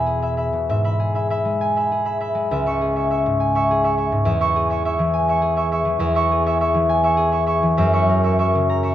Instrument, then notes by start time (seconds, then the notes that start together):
harp
Already playing: E2 B2 E4 B4 E5 G#5 B5
0.06 G#4
0.22 E5 B5
0.37 E5 B5
0.53 B2
0.69 G#2 E5
0.84 E5 B5
1.00 G#4
1.15 E5 B5
1.30 E5 B5
1.45 G#3
1.61 G#5
1.76 E5 B5
1.92 G#4
2.05 E5 B5
2.21 E5 B5
2.35 G#3
2.51 C#2 E5
2.66 E5 C#6
2.81 G#4
2.96 E5 C#6
3.11 E5 C#6
3.26 G#2
3.40 G#5
3.55 E5 C#6
3.71 G#4
3.84 E5 C#6
3.98 E5 C#6
4.12 G#2
4.25 E2 E5
4.41 E5 C#6
4.56 G#4
4.70 E5 C#6
4.85 E5 C#6
4.99 E3
5.14 G#5
5.28 E5 C#6
5.42 G#4
5.57 E5 C#6
5.72 E5 C#6
5.85 E3
5.99 E2 E5
6.15 E5 C#6
6.31 G#4
6.46 E5 C#6
6.61 E5 C#6
6.74 E3
6.89 G#5
7.04 E5 C#6
7.17 G#4
7.32 E5 C#6
7.47 E5 C#6
7.63 E3
7.77 F#2 E5
7.93 E5 C#6
8.09 A#4
8.24 E5 C#6
8.39 E5 C#6
8.55 C#3
8.70 A#5
8.83 E5 C#6